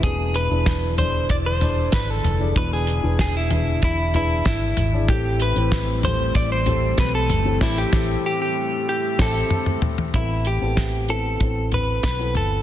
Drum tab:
CC |----------------|----------------|----------------|x---------x-----|
HH |x-x-x-x-x-x-x-x-|x-x-x-x-x-x-x-x-|x-xxx-x-x-x-x-x-|----------------|
SD |----o-------o---|----o-------o---|----o-------o---|o-o-------o-----|
T2 |----------------|----------------|----------------|------------oo--|
FT |------o---o---o-|------o---o---o-|------o---o---o-|--------------oo|
BD |o---o---o---o---|o---o---o---o---|o---o---o---o---|o-o-------o-----|

CC |----------------|
HH |x-x-x-x-x-x-x-x-|
SD |----o-------o---|
T2 |----------------|
FT |----------o---o-|
BD |o---o---o---o---|